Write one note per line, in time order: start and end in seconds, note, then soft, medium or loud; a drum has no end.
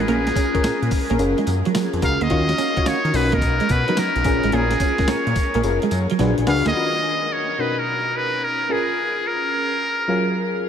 0.00 0.71 C#4 medium
0.00 0.71 F4 medium
0.00 0.72 G#4 medium
0.00 0.09 G#4 medium
0.00 0.72 A#4 medium
0.08 0.31 A#1 loud
0.08 0.19 A#3 medium
0.08 0.28 C#4 medium
0.08 0.28 G#4 medium
0.08 0.88 G#4 medium
0.08 0.28 A#4 loud
0.08 closed hi-hat medium
0.27 muted clean electric guitar stroke soft
0.27 snare medium
0.27 closed hi-hat medium
0.36 0.47 C#4 medium
0.36 kick medium
0.36 closed hi-hat medium
0.36 tambourine medium
0.54 0.58 A#2 soft
0.54 0.62 C#4 medium
0.54 0.63 G#4 medium
0.54 0.63 A#4 medium
0.54 kick loud
0.54 closed hi-hat medium
0.63 0.71 A#2 soft
0.63 0.83 C#4 medium
0.63 0.75 C#4 medium
0.63 0.84 G#4 medium
0.63 0.84 A#4 medium
0.63 snare loud
0.63 closed hi-hat medium
0.63 tambourine medium
0.82 0.90 A#2 medium
0.82 closed hi-hat medium
0.91 muted clean electric guitar stroke soft
0.91 kick loud
0.91 open hi-hat medium
0.91 tambourine medium
1.10 1.18 A#1 medium
1.10 1.16 A#3 medium
1.10 1.22 C#4 medium
1.10 1.22 G#4 medium
1.10 1.22 A#4 medium
1.10 closed hi-hat medium
1.19 1.35 F#1 loud
1.19 1.89 C#4 loud
1.19 1.90 F4 medium
1.19 1.90 G#4 medium
1.19 1.90 A#4 loud
1.19 closed hi-hat medium
1.19 tambourine medium
1.38 1.43 G#3 medium
1.38 closed hi-hat soft
1.47 1.63 F#2 loud
1.47 muted clean electric guitar stroke soft
1.47 closed hi-hat medium
1.47 tambourine medium
1.65 1.71 F#3 medium
1.65 closed hi-hat medium
1.75 1.86 F#3 medium
1.75 snare loud
1.75 closed hi-hat medium
1.75 tambourine loud
1.93 2.01 F2 medium
1.93 closed hi-hat medium
2.02 2.18 C#2 medium
2.02 2.24 C#4 medium
2.02 2.22 F4 medium
2.02 2.24 F4 medium
2.02 2.22 F#4 medium
2.02 2.24 G#4 medium
2.02 2.23 A#4 medium
2.02 2.25 A#4 medium
2.02 2.24 F5 loud
2.02 muted clean electric guitar stroke soft
2.02 kick loud
2.02 closed hi-hat medium
2.02 tambourine medium
2.21 2.29 D2 loud
2.21 2.27 A#3 medium
2.21 2.89 D#5 loud
2.21 closed hi-hat medium
2.30 2.54 D#2 loud
2.30 3.07 C#4 medium
2.30 2.41 D#4 loud
2.30 2.50 F4 loud
2.30 3.07 F4 medium
2.30 2.50 F#4 medium
2.30 3.07 F#4 medium
2.30 3.08 A#4 medium
2.30 2.51 C#5 loud
2.30 kick loud
2.30 closed hi-hat medium
2.49 muted clean electric guitar stroke soft
2.49 snare medium
2.49 closed hi-hat medium
2.58 2.69 C#4 medium
2.58 closed hi-hat medium
2.58 tambourine medium
2.77 2.81 D#3 soft
2.77 2.85 F4 medium
2.77 2.85 F#4 medium
2.77 2.86 C#5 medium
2.77 kick medium
2.77 closed hi-hat medium
2.86 2.93 D#3 soft
2.86 2.97 C#4 medium
2.86 3.06 F4 medium
2.86 3.06 F#4 medium
2.86 3.06 C#5 medium
2.86 3.17 C#5 loud
2.86 snare loud
2.86 closed hi-hat medium
2.86 tambourine medium
3.05 3.12 D#3 loud
3.05 closed hi-hat soft
3.13 3.60 B1 loud
3.13 4.05 C#4 medium
3.13 4.05 D#4 medium
3.13 4.05 F#4 medium
3.13 4.05 A#4 medium
3.13 3.36 B4 medium
3.13 muted clean electric guitar stroke soft
3.13 open hi-hat medium
3.13 tambourine medium
3.32 3.38 A#3 medium
3.32 3.44 B3 medium
3.32 3.44 D#4 medium
3.32 3.45 A#4 medium
3.32 3.73 A#4 medium
3.32 kick loud
3.32 closed hi-hat medium
3.42 kick medium
3.42 closed hi-hat medium
3.42 tambourine medium
3.60 3.66 G#3 medium
3.60 closed hi-hat soft
3.69 3.85 B2 loud
3.69 4.00 B4 medium
3.69 muted clean electric guitar stroke soft
3.69 kick loud
3.69 closed hi-hat medium
3.69 tambourine medium
3.88 3.94 F#3 medium
3.88 4.00 B3 medium
3.88 4.00 D#4 medium
3.88 4.00 A#4 medium
3.88 closed hi-hat medium
3.97 4.09 F#3 medium
3.97 4.56 A#4 medium
3.97 snare loud
3.97 closed hi-hat medium
3.97 tambourine loud
4.16 4.23 B1 medium
4.16 closed hi-hat medium
4.24 4.40 A#1 loud
4.24 5.16 C#4 medium
4.24 4.45 C#4 medium
4.24 5.16 F4 medium
4.24 4.45 G#4 medium
4.24 5.16 G#4 medium
4.24 4.45 A#4 medium
4.24 5.16 A#4 medium
4.24 muted clean electric guitar stroke soft
4.24 kick loud
4.24 closed hi-hat medium
4.24 tambourine medium
4.43 4.51 A1 medium
4.43 4.49 G#3 medium
4.43 closed hi-hat medium
4.52 4.76 A#1 loud
4.52 4.64 A#3 medium
4.52 4.73 C#4 medium
4.52 4.73 G#4 medium
4.52 5.11 G#4 loud
4.52 4.73 A#4 loud
4.52 closed hi-hat medium
4.71 muted clean electric guitar stroke soft
4.71 snare medium
4.71 closed hi-hat medium
4.80 4.92 C#4 medium
4.80 kick medium
4.80 closed hi-hat medium
4.80 tambourine medium
4.98 5.03 A#2 soft
4.98 5.07 C#4 medium
4.98 5.07 G#4 medium
4.98 5.07 A#4 medium
4.98 kick loud
4.98 snare medium
4.98 closed hi-hat soft
5.08 5.16 A#2 soft
5.08 5.28 C#4 medium
5.08 5.19 C#4 medium
5.08 5.28 G#4 medium
5.08 5.28 A#4 medium
5.08 5.64 C#5 medium
5.08 snare loud
5.08 closed hi-hat medium
5.08 tambourine medium
5.27 5.34 A#2 medium
5.27 closed hi-hat medium
5.36 muted clean electric guitar stroke soft
5.36 kick loud
5.36 closed hi-hat medium
5.36 tambourine medium
5.54 5.62 A#1 medium
5.54 5.61 A#3 medium
5.54 5.66 C#4 medium
5.54 5.66 G#4 medium
5.54 5.67 A#4 medium
5.54 closed hi-hat medium
5.63 5.79 F#1 loud
5.63 6.12 C#4 medium
5.63 6.12 F4 medium
5.63 6.12 G#4 medium
5.63 6.12 A#4 medium
5.63 closed hi-hat medium
5.63 tambourine medium
5.82 5.88 G#3 medium
5.82 closed hi-hat medium
5.91 6.07 F#2 loud
5.91 muted clean electric guitar stroke soft
5.91 closed hi-hat medium
5.91 tambourine medium
6.10 6.16 F#3 medium
6.10 closed hi-hat medium
6.19 6.35 A#1 loud
6.19 6.31 F#3 medium
6.19 6.43 D4 loud
6.19 6.43 F#4 medium
6.19 6.44 G#4 medium
6.19 6.44 B4 loud
6.19 6.45 G#5 medium
6.19 snare medium
6.19 closed hi-hat medium
6.38 6.46 A#1 medium
6.38 closed hi-hat medium
6.47 6.62 C#2 loud
6.47 6.67 D4 medium
6.47 6.69 D4 medium
6.47 6.67 F#4 medium
6.47 6.69 F#4 medium
6.47 6.67 G#4 medium
6.47 6.69 G#4 medium
6.47 6.67 B4 medium
6.47 6.69 B4 medium
6.47 6.65 F5 loud
6.47 6.73 F#5 medium
6.47 muted clean electric guitar stroke soft
6.47 snare medium
6.47 open hi-hat medium
6.66 6.73 D2 loud
6.66 6.72 A#3 medium
6.66 7.34 D#5 loud
6.66 snare loud
6.66 closed hi-hat soft
6.75 7.52 D#3 medium
6.75 7.52 C#4 medium
6.75 7.52 F4 medium
6.75 7.52 F#4 medium
6.75 7.52 A#4 medium
7.32 7.62 C#5 loud
7.58 8.49 B2 medium
7.58 8.49 C#4 medium
7.58 8.49 D#4 medium
7.58 8.49 F#4 medium
7.58 8.50 A#4 medium
7.58 7.80 B4 medium
7.79 8.17 A#4 loud
8.16 8.46 B4 loud
8.44 8.73 A#4 medium
8.69 9.60 C#4 medium
8.69 9.60 F4 medium
8.69 9.60 G#4 medium
8.69 9.28 G#4 medium
8.69 9.61 A#4 medium
9.27 10.66 A#4 loud
10.08 10.69 F#3 loud
10.08 10.69 C#4 medium
10.08 10.69 F4 medium
10.08 10.69 G#4 medium
10.08 10.69 A#4 loud